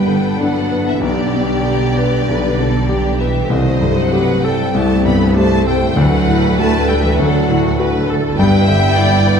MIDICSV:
0, 0, Header, 1, 9, 480
1, 0, Start_track
1, 0, Key_signature, 1, "major"
1, 0, Tempo, 622407
1, 790, Time_signature, 4, 2, 24, 8
1, 3664, Tempo, 607903
1, 6064, Tempo, 591716
1, 7369, End_track
2, 0, Start_track
2, 0, Title_t, "Violin section"
2, 0, Program_c, 0, 48
2, 0, Note_on_c, 0, 79, 56
2, 302, Note_off_c, 0, 79, 0
2, 306, Note_on_c, 0, 78, 64
2, 669, Note_off_c, 0, 78, 0
2, 681, Note_on_c, 0, 76, 56
2, 795, Note_on_c, 0, 74, 75
2, 796, Note_off_c, 0, 76, 0
2, 2441, Note_off_c, 0, 74, 0
2, 2469, Note_on_c, 0, 76, 57
2, 2705, Note_off_c, 0, 76, 0
2, 2723, Note_on_c, 0, 75, 65
2, 3073, Note_on_c, 0, 78, 68
2, 3076, Note_off_c, 0, 75, 0
2, 3431, Note_off_c, 0, 78, 0
2, 3435, Note_on_c, 0, 79, 60
2, 3666, Note_off_c, 0, 79, 0
2, 3674, Note_on_c, 0, 81, 69
2, 3904, Note_off_c, 0, 81, 0
2, 3913, Note_on_c, 0, 83, 57
2, 4138, Note_off_c, 0, 83, 0
2, 4151, Note_on_c, 0, 81, 78
2, 4379, Note_off_c, 0, 81, 0
2, 4391, Note_on_c, 0, 79, 72
2, 4622, Note_off_c, 0, 79, 0
2, 4628, Note_on_c, 0, 78, 86
2, 5106, Note_off_c, 0, 78, 0
2, 5116, Note_on_c, 0, 81, 89
2, 5341, Note_on_c, 0, 79, 81
2, 5344, Note_off_c, 0, 81, 0
2, 5461, Note_off_c, 0, 79, 0
2, 5473, Note_on_c, 0, 76, 71
2, 5570, Note_on_c, 0, 78, 68
2, 5588, Note_off_c, 0, 76, 0
2, 6055, Note_off_c, 0, 78, 0
2, 6544, Note_on_c, 0, 79, 105
2, 7369, Note_off_c, 0, 79, 0
2, 7369, End_track
3, 0, Start_track
3, 0, Title_t, "Violin section"
3, 0, Program_c, 1, 48
3, 68, Note_on_c, 1, 69, 47
3, 784, Note_on_c, 1, 67, 55
3, 792, Note_off_c, 1, 69, 0
3, 1736, Note_off_c, 1, 67, 0
3, 1766, Note_on_c, 1, 71, 49
3, 1998, Note_on_c, 1, 69, 47
3, 2002, Note_off_c, 1, 71, 0
3, 2232, Note_on_c, 1, 67, 51
3, 2236, Note_off_c, 1, 69, 0
3, 2694, Note_off_c, 1, 67, 0
3, 2694, Note_on_c, 1, 72, 55
3, 3183, Note_off_c, 1, 72, 0
3, 3190, Note_on_c, 1, 71, 59
3, 3429, Note_off_c, 1, 71, 0
3, 3438, Note_on_c, 1, 69, 53
3, 3662, Note_off_c, 1, 69, 0
3, 3670, Note_on_c, 1, 67, 47
3, 4130, Note_off_c, 1, 67, 0
3, 4137, Note_on_c, 1, 72, 55
3, 4618, Note_on_c, 1, 71, 67
3, 4619, Note_off_c, 1, 72, 0
3, 5578, Note_on_c, 1, 69, 62
3, 5581, Note_off_c, 1, 71, 0
3, 5820, Note_on_c, 1, 66, 57
3, 5821, Note_off_c, 1, 69, 0
3, 6060, Note_off_c, 1, 66, 0
3, 6060, Note_on_c, 1, 71, 64
3, 6297, Note_off_c, 1, 71, 0
3, 6299, Note_on_c, 1, 69, 55
3, 6539, Note_off_c, 1, 69, 0
3, 6543, Note_on_c, 1, 71, 65
3, 6768, Note_on_c, 1, 76, 69
3, 6781, Note_off_c, 1, 71, 0
3, 7009, Note_on_c, 1, 74, 68
3, 7015, Note_off_c, 1, 76, 0
3, 7369, Note_off_c, 1, 74, 0
3, 7369, End_track
4, 0, Start_track
4, 0, Title_t, "Viola section"
4, 0, Program_c, 2, 48
4, 0, Note_on_c, 2, 59, 46
4, 0, Note_on_c, 2, 71, 43
4, 763, Note_off_c, 2, 71, 0
4, 781, Note_on_c, 2, 67, 50
4, 2670, Note_off_c, 2, 67, 0
4, 2677, Note_off_c, 2, 59, 0
4, 2706, Note_on_c, 2, 57, 54
4, 2706, Note_on_c, 2, 69, 53
4, 6508, Note_off_c, 2, 57, 0
4, 6508, Note_off_c, 2, 69, 0
4, 6545, Note_on_c, 2, 59, 60
4, 6545, Note_on_c, 2, 64, 66
4, 7369, Note_off_c, 2, 59, 0
4, 7369, Note_off_c, 2, 64, 0
4, 7369, End_track
5, 0, Start_track
5, 0, Title_t, "French horn section"
5, 0, Program_c, 3, 60
5, 0, Note_on_c, 3, 59, 50
5, 0, Note_on_c, 3, 62, 44
5, 758, Note_off_c, 3, 59, 0
5, 788, Note_on_c, 3, 55, 51
5, 2673, Note_off_c, 3, 55, 0
5, 2674, Note_off_c, 3, 62, 0
5, 2708, Note_on_c, 3, 57, 57
5, 2718, Note_on_c, 3, 60, 57
5, 4488, Note_off_c, 3, 60, 0
5, 4622, Note_on_c, 3, 62, 60
5, 6509, Note_off_c, 3, 57, 0
5, 6510, Note_off_c, 3, 62, 0
5, 6522, Note_on_c, 3, 59, 62
5, 6533, Note_on_c, 3, 64, 62
5, 7369, Note_off_c, 3, 59, 0
5, 7369, Note_off_c, 3, 64, 0
5, 7369, End_track
6, 0, Start_track
6, 0, Title_t, "Grand piano"
6, 0, Program_c, 4, 0
6, 0, Control_c, 4, 64, 127
6, 0, Note_on_c, 4, 43, 45
6, 0, Note_on_c, 4, 50, 39
6, 0, Note_on_c, 4, 62, 40
6, 0, Note_on_c, 4, 71, 47
6, 59, Note_off_c, 4, 50, 0
6, 59, Note_on_c, 4, 50, 38
6, 315, Note_off_c, 4, 62, 0
6, 315, Note_on_c, 4, 62, 48
6, 450, Note_off_c, 4, 50, 0
6, 549, Note_off_c, 4, 71, 0
6, 549, Note_on_c, 4, 71, 42
6, 697, Note_off_c, 4, 62, 0
6, 760, Note_off_c, 4, 43, 0
6, 780, Note_on_c, 4, 35, 57
6, 790, Note_off_c, 4, 71, 0
6, 806, Control_c, 4, 64, 0
6, 949, Control_c, 4, 64, 127
6, 1032, Note_on_c, 4, 47, 40
6, 1275, Note_on_c, 4, 67, 44
6, 1421, Note_off_c, 4, 47, 0
6, 1524, Note_on_c, 4, 71, 48
6, 1661, Note_off_c, 4, 67, 0
6, 1724, Note_off_c, 4, 35, 0
6, 1762, Note_on_c, 4, 35, 49
6, 1906, Note_off_c, 4, 71, 0
6, 1992, Note_on_c, 4, 47, 40
6, 2227, Note_on_c, 4, 67, 46
6, 2373, Note_off_c, 4, 47, 0
6, 2473, Note_on_c, 4, 71, 45
6, 2606, Note_off_c, 4, 67, 0
6, 2679, Note_off_c, 4, 35, 0
6, 2696, Note_on_c, 4, 36, 60
6, 2707, Note_off_c, 4, 71, 0
6, 2718, Control_c, 4, 64, 0
6, 2830, Control_c, 4, 64, 127
6, 2939, Note_on_c, 4, 43, 44
6, 3183, Note_on_c, 4, 67, 47
6, 3330, Note_off_c, 4, 43, 0
6, 3425, Note_on_c, 4, 69, 58
6, 3566, Note_off_c, 4, 67, 0
6, 3629, Note_off_c, 4, 36, 0
6, 3658, Note_on_c, 4, 36, 57
6, 3802, Note_off_c, 4, 69, 0
6, 3903, Note_on_c, 4, 43, 51
6, 4130, Note_on_c, 4, 67, 54
6, 4282, Note_off_c, 4, 43, 0
6, 4388, Note_on_c, 4, 69, 51
6, 4519, Note_off_c, 4, 67, 0
6, 4588, Note_off_c, 4, 36, 0
6, 4624, Note_on_c, 4, 38, 65
6, 4625, Note_off_c, 4, 69, 0
6, 4634, Control_c, 4, 64, 0
6, 4742, Control_c, 4, 64, 127
6, 4865, Note_on_c, 4, 45, 48
6, 5117, Note_on_c, 4, 66, 50
6, 5247, Note_off_c, 4, 45, 0
6, 5351, Note_on_c, 4, 69, 58
6, 5493, Note_off_c, 4, 66, 0
6, 5555, Note_off_c, 4, 38, 0
6, 5592, Note_on_c, 4, 38, 57
6, 5731, Note_off_c, 4, 69, 0
6, 5825, Note_on_c, 4, 45, 53
6, 6067, Note_on_c, 4, 66, 60
6, 6207, Note_off_c, 4, 45, 0
6, 6314, Note_on_c, 4, 69, 53
6, 6448, Note_off_c, 4, 66, 0
6, 6516, Note_off_c, 4, 38, 0
6, 6546, Note_off_c, 4, 69, 0
6, 6554, Control_c, 4, 64, 0
6, 6554, Note_on_c, 4, 43, 70
6, 6672, Control_c, 4, 64, 127
6, 6785, Note_on_c, 4, 50, 52
6, 7023, Note_on_c, 4, 64, 57
6, 7168, Note_off_c, 4, 50, 0
6, 7261, Note_on_c, 4, 71, 59
6, 7369, Note_off_c, 4, 43, 0
6, 7369, Note_off_c, 4, 64, 0
6, 7369, Note_off_c, 4, 71, 0
6, 7369, End_track
7, 0, Start_track
7, 0, Title_t, "Cello section"
7, 0, Program_c, 5, 48
7, 0, Note_on_c, 5, 55, 49
7, 308, Note_off_c, 5, 55, 0
7, 309, Note_on_c, 5, 54, 48
7, 670, Note_off_c, 5, 54, 0
7, 670, Note_on_c, 5, 52, 51
7, 790, Note_off_c, 5, 52, 0
7, 794, Note_on_c, 5, 50, 47
7, 2441, Note_off_c, 5, 50, 0
7, 2471, Note_on_c, 5, 52, 54
7, 2701, Note_off_c, 5, 52, 0
7, 2705, Note_on_c, 5, 51, 50
7, 3064, Note_on_c, 5, 54, 58
7, 3068, Note_off_c, 5, 51, 0
7, 3427, Note_off_c, 5, 54, 0
7, 3427, Note_on_c, 5, 55, 52
7, 3662, Note_off_c, 5, 55, 0
7, 3667, Note_on_c, 5, 57, 58
7, 3901, Note_off_c, 5, 57, 0
7, 3904, Note_on_c, 5, 59, 62
7, 4138, Note_off_c, 5, 59, 0
7, 4142, Note_on_c, 5, 57, 58
7, 4379, Note_off_c, 5, 57, 0
7, 4384, Note_on_c, 5, 55, 60
7, 4613, Note_on_c, 5, 54, 62
7, 4623, Note_off_c, 5, 55, 0
7, 5089, Note_off_c, 5, 54, 0
7, 5105, Note_on_c, 5, 57, 69
7, 5343, Note_off_c, 5, 57, 0
7, 5349, Note_on_c, 5, 55, 61
7, 5465, Note_off_c, 5, 55, 0
7, 5470, Note_on_c, 5, 52, 66
7, 5586, Note_off_c, 5, 52, 0
7, 5589, Note_on_c, 5, 54, 60
7, 6065, Note_off_c, 5, 54, 0
7, 6535, Note_on_c, 5, 55, 74
7, 7369, Note_off_c, 5, 55, 0
7, 7369, End_track
8, 0, Start_track
8, 0, Title_t, "Timpani"
8, 0, Program_c, 6, 47
8, 4614, Note_on_c, 6, 50, 51
8, 5307, Note_off_c, 6, 50, 0
8, 7369, End_track
9, 0, Start_track
9, 0, Title_t, "Double bass section"
9, 0, Program_c, 7, 48
9, 0, Note_on_c, 7, 31, 50
9, 760, Note_off_c, 7, 31, 0
9, 795, Note_on_c, 7, 35, 50
9, 2677, Note_off_c, 7, 35, 0
9, 2708, Note_on_c, 7, 36, 61
9, 4618, Note_on_c, 7, 38, 66
9, 4620, Note_off_c, 7, 36, 0
9, 6508, Note_off_c, 7, 38, 0
9, 6541, Note_on_c, 7, 31, 69
9, 7369, Note_off_c, 7, 31, 0
9, 7369, End_track
0, 0, End_of_file